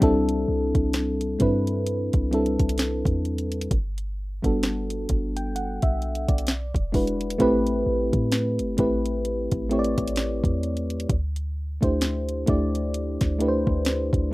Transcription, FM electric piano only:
0.00 1.13 G3 loud
0.00 1.14 C4 loud
0.00 1.14 D4 loud
0.00 1.15 E4 loud
0.00 1.15 A4 loud
1.39 2.16 G3 medium
1.39 2.16 C4 medium
1.39 2.16 D4 medium
1.39 2.17 E4 medium
1.39 2.17 B4 loud
2.31 3.70 G3 medium
2.31 3.71 C4 medium
2.31 3.71 D4 medium
2.31 3.72 E4 medium
2.31 3.72 A4 loud
4.42 4.97 G3 medium
4.42 4.97 B3 medium
4.42 4.97 D4 medium
4.42 4.98 F#4 medium
4.42 4.98 A4 medium
5.37 5.55 G5 medium
5.56 5.81 F#5 medium
5.83 6.26 E5 medium
6.28 6.72 D5 medium
6.92 7.31 G#3 medium
6.92 7.32 D4 medium
6.92 7.32 E4 medium
6.92 7.32 F#4 medium
6.92 7.33 B4 medium
7.38 8.52 A3 loud
7.38 8.52 C4 loud
7.38 8.52 E4 loud
7.38 8.53 G4 loud
7.38 8.53 B4 loud
8.77 9.54 A3 medium
8.77 9.54 C4 medium
8.77 9.55 E4 medium
8.77 9.55 G4 medium
8.77 9.56 B4 medium
9.70 11.09 A3 medium
9.70 11.09 C4 medium
9.70 11.10 E4 medium
9.70 11.10 G4 medium
9.70 9.79 C#5 medium
9.79 11.14 D5 loud
11.81 12.35 A3 medium
11.81 12.35 D4 medium
11.81 12.36 E4 medium
11.81 12.36 G4 medium
11.81 12.37 C5 medium
12.46 13.23 A3 medium
12.46 13.24 D4 medium
12.46 13.24 E4 medium
12.46 13.24 G4 medium
12.46 13.25 D5 medium
13.39 14.16 A3 medium
13.39 14.16 D4 medium
13.39 14.16 E4 medium
13.39 14.17 G4 medium
13.39 13.49 B4 medium
13.48 14.20 C5 loud

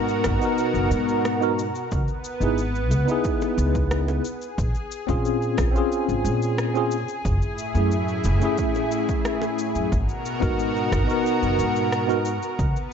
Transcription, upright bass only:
0.00 0.27 G#2 medium
0.25 0.38 G#1 medium
0.74 0.92 F#1 medium
0.91 1.68 G#2 medium
1.92 2.04 C#2 medium
2.41 2.91 G#1 medium
2.91 3.04 C#2 medium
3.58 4.18 C#2 medium
4.58 4.71 A#1 medium
5.09 5.60 A#2 medium
5.59 5.71 A#1 medium
6.08 6.26 G#1 medium
6.24 7.02 A#2 medium
7.25 7.38 F#1 medium
7.75 8.26 F#2 medium
8.24 8.37 F#1 medium
9.75 9.88 F#2 medium
9.92 10.05 G#1 medium
10.42 10.93 G#2 medium
10.92 11.05 G#1 medium
11.43 11.60 F#1 medium
11.58 12.35 G#2 medium
12.59 12.71 C#2 medium

